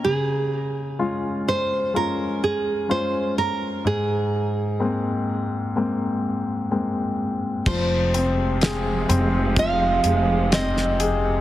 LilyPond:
<<
  \new Staff \with { instrumentName = "Nylon-string guitar" } { \time 4/4 \key f \minor \tempo 4 = 63 aes'4. c''8 bes'8 aes'8 c''8 bes'8 | aes'2.~ aes'8 r8 | c''2 f''4 ees''4 | }
  \new Staff \with { instrumentName = "Grand piano" } { \time 4/4 \key f \minor des4 <aes des' f'>4 <aes des' f'>4 <aes des' f'>4 | aes,4 <aes bes c'>4 <aes bes c'>4 <aes bes c'>4 | f8 c'8 aes'8 c'8 f8 aes'8 c'8 aes'8 | }
  \new Staff \with { instrumentName = "String section" } { \clef bass \time 4/4 \key f \minor r1 | r1 | <c f aes>1 | }
  \new Staff \with { instrumentName = "Upright bass" } { \clef bass \time 4/4 \key f \minor r1 | r1 | f,,4. f,,4 f,,4. | }
  \new DrumStaff \with { instrumentName = "Drums" } \drummode { \time 4/4 r4 r4 r4 r4 | r4 r4 r4 r4 | <cymc bd>8 hh8 <hh sn>8 hh8 <hh bd>8 hh8 <hh sn>16 sn16 hh8 | }
>>